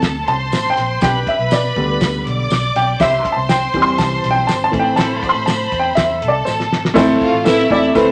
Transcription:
Already playing: string section A4 A5
0.02 fingered electric bass D2, kick, snare, closed hi-hat, tambourine
0.27 fingered electric bass C2, string section C5 C6, upright piano A5, closed hi-hat
0.52 fingered electric bass A1, snare, closed hi-hat, tambourine
0.70 upright piano G5
0.77 fingered electric bass A#1, snare, closed hi-hat
1.01 fingered electric bass B1, horn section D4 G4 B4, string section B4 B5, upright piano G5, kick, snare, closed hi-hat, tambourine
1.27 upright piano E5, kick, closed hi-hat
1.39 fingered electric bass B1
1.51 fingered electric bass B2, upright piano D5, snare, closed hi-hat, tambourine
1.76 fingered electric bass D2, upright piano D3 G3 B3, kick, closed hi-hat
2.01 fingered electric bass D2, kick, snare, closed hi-hat, tambourine
2.26 fingered electric bass B1, string section D5 D6, closed hi-hat
2.50 fingered electric bass B1, snare, closed hi-hat, tambourine
2.75 fingered electric bass B1, upright piano G5, closed hi-hat
3.00 fingered electric bass C2, horn section E4 G4 C5, string section C5 C6, upright piano E5, kick, snare, closed hi-hat, tambourine
3.25 kick, closed hi-hat
3.32 upright piano A5
3.36 fingered electric bass C2
3.49 upright piano G5, snare, closed hi-hat, tambourine
3.74 fingered electric bass E2, upright piano E3 G3 C4, kick, closed hi-hat
3.82 upright piano C6
3.98 fingered electric bass C2, upright piano A5, kick, snare, closed hi-hat, tambourine
4.24 fingered electric bass B1, closed hi-hat
4.31 upright piano G5
4.47 upright piano A5, snare, closed hi-hat, tambourine
4.64 upright piano A5
4.71 fingered electric bass A1, upright piano E3 A3 C4, string section C5 B5, kick, closed hi-hat
4.80 upright piano G5
4.96 fingered electric bass A1, horn section E4 A4 C5, upright piano A5, snare, closed hi-hat, tambourine
5.23 kick, closed hi-hat
5.29 upright piano C6
5.35 fingered electric bass A1
5.46 fingered electric bass A2, upright piano A5, snare, closed hi-hat, tambourine
5.72 fingered electric bass E2, kick, closed hi-hat
5.79 upright piano G5
5.95 fingered electric bass E2, upright piano E5, kick, snare, closed hi-hat, tambourine
6.22 fingered electric bass C2, string section A4 A5, closed hi-hat
6.28 upright piano D5
6.45 fingered electric bass A1, upright piano C5, snare, tambourine
6.60 snare
6.71 fingered electric bass G#1, snare
6.85 snare
6.94 fingered electric bass A1, upright piano A3 C4 E4 A4 C5, kick, snare, crash, tambourine
7.21 string section F4 F5, kick, ride
7.33 fingered electric bass A1
7.44 fingered electric bass A2, upright piano A3 C4 E4 A4 B4, string section E4 E5, snare, ride, tambourine
7.70 fingered electric bass E2, upright piano A3 C4 E4 A4 D5, string section E4 E5, kick, ride
7.95 fingered electric bass D2, upright piano A3 C4 E4 A4 B4, string section C4 C5, kick, snare, tambourine

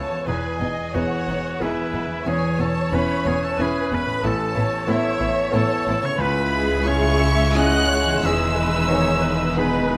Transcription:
Already playing: grand piano C#2 B3 E4 G#4 B4, harp C#3 B3 B4, oboe A4, viola section C#5, violin section A5
0.10 harp E3
0.14 harp B3
0.26 double bass section E1, grand piano E2, cello section E2, violin section B3 D#4 G#5, oboe G#4, viola section B4
0.60 double bass section E1, cello section E2, violin section B3 D#4, viola section D#5
0.94 double bass section E1, cello section E2, grand piano E3 B3 G#4, violin section B3 D#4 F#5, oboe F#4, viola section C#5
1.28 double bass section E1, cello section E2, violin section B3 D#4
1.59 double bass section E1, cello section E2, grand piano E3 B3 G#4, violin section B3 D#4 E5, oboe E4, viola section B4
1.93 double bass section E1, cello section E2, violin section B3 D#4
2.07 harp E3
2.12 harp B3
2.16 harp E4 C#5
2.25 double bass section E1, grand piano E2, cello section E2, violin section B3 C#4 G#5, oboe G#4, viola section C#5
2.59 double bass section E1, cello section E2, violin section B3 C#4 A5, oboe A4
2.92 double bass section E1, cello section E2, violin section B3 C#4 B5, grand piano C#4 E4 B4, oboe B4
3.25 double bass section E1, cello section E2, violin section B3 C#4 G#5, oboe G#4
3.44 oboe A4, violin section A5
3.59 double bass section E1, cello section E2, violin section B3 C#4 G#5, grand piano C#4 E4 B4, oboe G#4, viola section B4
3.91 double bass section E1, cello section E2, violin section B3 C#4 B5, oboe B4
4.06 harp A2
4.11 harp B3
4.20 grand piano A1, violin section E4, harp A4
4.24 double bass section A1, cello section A2, violin section B3 A5, viola section A4, oboe A4
4.55 double bass section A1, cello section A2, violin section B3 E4, viola section C#5
4.87 double bass section A1, cello section A2, grand piano B3 E4 A4, violin section B3 E4 E5, oboe E4
5.20 double bass section A1, cello section A2, violin section B3 E4
5.51 double bass section A1, cello section A2, grand piano B3 E4 A4, violin section B3 E4 A5, oboe A4
5.86 double bass section A1, cello section A2, violin section B3 E4
6.02 harp C#3, violin section C#6
6.06 harp C#4, oboe C#5
6.15 grand piano C#2, harp B4
6.19 cello section C#2, double bass section C#2, violin section G#3 E4 B5, viola section B4, oboe B4
6.53 viola section G#4
6.85 grand piano C#4 E4 G#4, viola section G#4, oboe C#5, violin section C#6
7.21 viola section E5
7.55 grand piano C#4 E4 G#4, viola section D#5, oboe F#5, violin section F#6
7.91 viola section C#5
8.05 harp E3
8.10 harp B3
8.14 harp D#3
8.23 double bass section E1, grand piano E2, cello section E2, violin section D#4 E6, viola section G#4, oboe E5
8.57 viola section B4
8.90 grand piano D#3 B3 G#4, viola section C#5
9.23 viola section B4
9.56 grand piano B3 D#4 G#4, viola section B4, oboe B4, violin section B5

